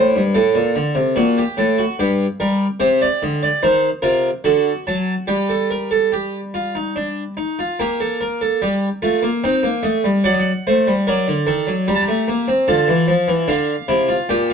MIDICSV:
0, 0, Header, 1, 2, 480
1, 0, Start_track
1, 0, Key_signature, -2, "minor"
1, 0, Tempo, 816327
1, 211, Time_signature, 3, 2, 24, 8
1, 2611, Tempo, 834492
1, 5011, Tempo, 814111
1, 8502, End_track
2, 0, Start_track
2, 0, Title_t, "Harpsichord"
2, 0, Program_c, 0, 6
2, 0, Note_on_c, 0, 45, 69
2, 0, Note_on_c, 0, 72, 84
2, 85, Note_off_c, 0, 45, 0
2, 92, Note_on_c, 0, 43, 61
2, 119, Note_off_c, 0, 72, 0
2, 203, Note_on_c, 0, 45, 84
2, 204, Note_on_c, 0, 69, 72
2, 208, Note_off_c, 0, 43, 0
2, 322, Note_on_c, 0, 46, 70
2, 323, Note_off_c, 0, 45, 0
2, 442, Note_off_c, 0, 46, 0
2, 444, Note_on_c, 0, 50, 80
2, 558, Note_on_c, 0, 48, 76
2, 564, Note_off_c, 0, 50, 0
2, 672, Note_off_c, 0, 69, 0
2, 681, Note_off_c, 0, 48, 0
2, 682, Note_on_c, 0, 46, 86
2, 682, Note_on_c, 0, 66, 77
2, 803, Note_off_c, 0, 66, 0
2, 811, Note_on_c, 0, 67, 69
2, 834, Note_off_c, 0, 46, 0
2, 925, Note_on_c, 0, 45, 82
2, 928, Note_off_c, 0, 67, 0
2, 929, Note_on_c, 0, 69, 65
2, 1047, Note_off_c, 0, 69, 0
2, 1048, Note_on_c, 0, 66, 66
2, 1076, Note_off_c, 0, 45, 0
2, 1166, Note_off_c, 0, 66, 0
2, 1172, Note_on_c, 0, 43, 81
2, 1173, Note_on_c, 0, 67, 79
2, 1321, Note_off_c, 0, 43, 0
2, 1321, Note_off_c, 0, 67, 0
2, 1411, Note_on_c, 0, 55, 83
2, 1411, Note_on_c, 0, 70, 70
2, 1559, Note_off_c, 0, 55, 0
2, 1559, Note_off_c, 0, 70, 0
2, 1645, Note_on_c, 0, 48, 74
2, 1646, Note_on_c, 0, 72, 79
2, 1648, Note_on_c, 0, 67, 77
2, 1764, Note_off_c, 0, 72, 0
2, 1773, Note_on_c, 0, 74, 78
2, 1795, Note_off_c, 0, 48, 0
2, 1887, Note_off_c, 0, 74, 0
2, 1897, Note_on_c, 0, 50, 64
2, 1897, Note_on_c, 0, 75, 77
2, 2009, Note_off_c, 0, 75, 0
2, 2016, Note_on_c, 0, 74, 73
2, 2043, Note_off_c, 0, 50, 0
2, 2114, Note_off_c, 0, 67, 0
2, 2129, Note_off_c, 0, 74, 0
2, 2133, Note_on_c, 0, 72, 84
2, 2135, Note_on_c, 0, 51, 73
2, 2135, Note_on_c, 0, 63, 72
2, 2281, Note_off_c, 0, 72, 0
2, 2283, Note_off_c, 0, 51, 0
2, 2283, Note_off_c, 0, 63, 0
2, 2366, Note_on_c, 0, 70, 70
2, 2367, Note_on_c, 0, 65, 68
2, 2368, Note_on_c, 0, 48, 62
2, 2517, Note_off_c, 0, 70, 0
2, 2518, Note_off_c, 0, 65, 0
2, 2519, Note_off_c, 0, 48, 0
2, 2612, Note_on_c, 0, 50, 68
2, 2613, Note_on_c, 0, 66, 70
2, 2616, Note_on_c, 0, 69, 78
2, 2760, Note_off_c, 0, 50, 0
2, 2763, Note_off_c, 0, 69, 0
2, 2859, Note_on_c, 0, 54, 59
2, 2859, Note_on_c, 0, 81, 74
2, 3006, Note_off_c, 0, 54, 0
2, 3006, Note_off_c, 0, 81, 0
2, 3078, Note_off_c, 0, 66, 0
2, 3090, Note_on_c, 0, 67, 64
2, 3092, Note_on_c, 0, 55, 65
2, 3094, Note_on_c, 0, 79, 57
2, 3209, Note_off_c, 0, 67, 0
2, 3217, Note_on_c, 0, 69, 57
2, 3333, Note_off_c, 0, 69, 0
2, 3338, Note_on_c, 0, 70, 51
2, 3455, Note_off_c, 0, 70, 0
2, 3456, Note_on_c, 0, 69, 53
2, 3574, Note_off_c, 0, 69, 0
2, 3579, Note_on_c, 0, 67, 64
2, 3728, Note_off_c, 0, 67, 0
2, 3820, Note_on_c, 0, 65, 56
2, 3936, Note_off_c, 0, 65, 0
2, 3941, Note_on_c, 0, 63, 54
2, 4057, Note_off_c, 0, 63, 0
2, 4060, Note_on_c, 0, 62, 59
2, 4209, Note_off_c, 0, 62, 0
2, 4278, Note_off_c, 0, 55, 0
2, 4279, Note_off_c, 0, 79, 0
2, 4296, Note_on_c, 0, 63, 61
2, 4415, Note_off_c, 0, 63, 0
2, 4423, Note_on_c, 0, 65, 53
2, 4538, Note_off_c, 0, 65, 0
2, 4541, Note_on_c, 0, 58, 63
2, 4541, Note_on_c, 0, 82, 63
2, 4543, Note_on_c, 0, 67, 71
2, 4656, Note_off_c, 0, 67, 0
2, 4661, Note_on_c, 0, 69, 66
2, 4774, Note_off_c, 0, 69, 0
2, 4778, Note_on_c, 0, 70, 65
2, 4892, Note_off_c, 0, 70, 0
2, 4896, Note_on_c, 0, 69, 65
2, 4999, Note_off_c, 0, 58, 0
2, 5010, Note_off_c, 0, 69, 0
2, 5015, Note_on_c, 0, 55, 63
2, 5015, Note_on_c, 0, 67, 71
2, 5164, Note_off_c, 0, 55, 0
2, 5164, Note_off_c, 0, 67, 0
2, 5253, Note_on_c, 0, 57, 57
2, 5253, Note_on_c, 0, 65, 68
2, 5371, Note_off_c, 0, 57, 0
2, 5372, Note_on_c, 0, 58, 52
2, 5403, Note_off_c, 0, 65, 0
2, 5472, Note_off_c, 0, 82, 0
2, 5490, Note_off_c, 0, 58, 0
2, 5497, Note_on_c, 0, 60, 65
2, 5497, Note_on_c, 0, 79, 64
2, 5498, Note_on_c, 0, 63, 80
2, 5611, Note_on_c, 0, 58, 52
2, 5613, Note_off_c, 0, 60, 0
2, 5647, Note_off_c, 0, 63, 0
2, 5728, Note_on_c, 0, 57, 63
2, 5728, Note_on_c, 0, 75, 80
2, 5731, Note_off_c, 0, 58, 0
2, 5850, Note_off_c, 0, 57, 0
2, 5853, Note_on_c, 0, 55, 60
2, 5881, Note_off_c, 0, 75, 0
2, 5966, Note_off_c, 0, 79, 0
2, 5970, Note_on_c, 0, 54, 65
2, 5971, Note_on_c, 0, 78, 61
2, 5972, Note_on_c, 0, 74, 82
2, 5973, Note_off_c, 0, 55, 0
2, 6015, Note_off_c, 0, 78, 0
2, 6021, Note_on_c, 0, 75, 53
2, 6061, Note_on_c, 0, 78, 65
2, 6062, Note_off_c, 0, 75, 0
2, 6122, Note_off_c, 0, 54, 0
2, 6124, Note_off_c, 0, 74, 0
2, 6224, Note_on_c, 0, 57, 57
2, 6224, Note_on_c, 0, 72, 68
2, 6338, Note_off_c, 0, 57, 0
2, 6343, Note_on_c, 0, 55, 60
2, 6371, Note_off_c, 0, 72, 0
2, 6447, Note_off_c, 0, 78, 0
2, 6458, Note_off_c, 0, 55, 0
2, 6461, Note_on_c, 0, 70, 79
2, 6463, Note_on_c, 0, 54, 71
2, 6465, Note_on_c, 0, 74, 65
2, 6577, Note_off_c, 0, 54, 0
2, 6582, Note_on_c, 0, 50, 66
2, 6608, Note_off_c, 0, 70, 0
2, 6693, Note_on_c, 0, 51, 66
2, 6694, Note_on_c, 0, 69, 74
2, 6696, Note_off_c, 0, 50, 0
2, 6810, Note_off_c, 0, 51, 0
2, 6814, Note_on_c, 0, 54, 57
2, 6843, Note_off_c, 0, 69, 0
2, 6924, Note_off_c, 0, 74, 0
2, 6931, Note_off_c, 0, 54, 0
2, 6936, Note_on_c, 0, 55, 74
2, 6937, Note_on_c, 0, 67, 90
2, 6937, Note_on_c, 0, 82, 72
2, 6976, Note_off_c, 0, 82, 0
2, 6976, Note_on_c, 0, 81, 67
2, 7017, Note_off_c, 0, 81, 0
2, 7018, Note_on_c, 0, 82, 73
2, 7051, Note_off_c, 0, 55, 0
2, 7057, Note_on_c, 0, 57, 63
2, 7172, Note_off_c, 0, 57, 0
2, 7173, Note_on_c, 0, 58, 70
2, 7290, Note_off_c, 0, 58, 0
2, 7290, Note_on_c, 0, 60, 73
2, 7400, Note_off_c, 0, 67, 0
2, 7402, Note_off_c, 0, 82, 0
2, 7408, Note_off_c, 0, 60, 0
2, 7409, Note_on_c, 0, 50, 85
2, 7409, Note_on_c, 0, 65, 72
2, 7409, Note_on_c, 0, 81, 78
2, 7526, Note_on_c, 0, 52, 82
2, 7527, Note_off_c, 0, 50, 0
2, 7641, Note_on_c, 0, 53, 73
2, 7645, Note_off_c, 0, 52, 0
2, 7761, Note_on_c, 0, 52, 83
2, 7763, Note_off_c, 0, 53, 0
2, 7875, Note_off_c, 0, 65, 0
2, 7875, Note_off_c, 0, 81, 0
2, 7879, Note_on_c, 0, 50, 84
2, 7880, Note_on_c, 0, 62, 76
2, 7881, Note_on_c, 0, 77, 73
2, 7883, Note_off_c, 0, 52, 0
2, 8032, Note_off_c, 0, 50, 0
2, 8032, Note_off_c, 0, 62, 0
2, 8119, Note_on_c, 0, 48, 87
2, 8119, Note_on_c, 0, 64, 71
2, 8238, Note_on_c, 0, 65, 68
2, 8242, Note_off_c, 0, 64, 0
2, 8272, Note_off_c, 0, 48, 0
2, 8353, Note_off_c, 0, 77, 0
2, 8359, Note_on_c, 0, 67, 76
2, 8360, Note_on_c, 0, 79, 71
2, 8361, Note_on_c, 0, 46, 91
2, 8362, Note_off_c, 0, 65, 0
2, 8481, Note_on_c, 0, 65, 65
2, 8483, Note_off_c, 0, 67, 0
2, 8502, Note_off_c, 0, 46, 0
2, 8502, Note_off_c, 0, 65, 0
2, 8502, Note_off_c, 0, 79, 0
2, 8502, End_track
0, 0, End_of_file